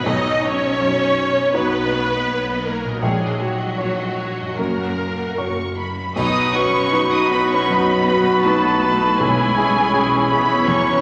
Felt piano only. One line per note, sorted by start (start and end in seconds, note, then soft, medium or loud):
0.06 2.99 B1 medium
0.80 1.98 F#2 soft
1.54 2.99 D#4 soft
1.54 2.99 F#4 soft
1.54 2.99 C#5 soft
3.02 4.54 A#1 medium
3.78 4.54 F#4 soft
3.78 4.54 C#5 soft
4.58 6.13 F#2 medium
5.38 6.13 F#4 soft
5.38 6.13 C#5 soft
6.16 6.53 B1 medium
6.55 6.89 F#4 soft
6.55 6.89 B4 medium
6.93 7.27 D#4 soft
6.93 7.28 F#4 soft
6.93 7.28 B4 soft
7.31 7.65 F#4 soft
7.31 7.66 B4 soft
7.70 8.07 F#2 medium
8.08 8.42 F#4 soft
8.08 8.42 B4 medium
8.46 8.79 D#4 soft
8.46 8.79 F#4 soft
8.46 8.80 B4 soft
8.83 9.16 F#4 soft
8.83 9.16 B4 medium
9.20 9.56 B1 medium
9.57 9.90 E4 medium
9.57 9.90 G#4 medium
9.93 10.27 C#4 soft
9.93 10.27 E4 soft
9.93 10.27 G#4 medium
10.31 10.64 E4 soft
10.31 10.64 G#4 soft
10.68 11.01 E2 medium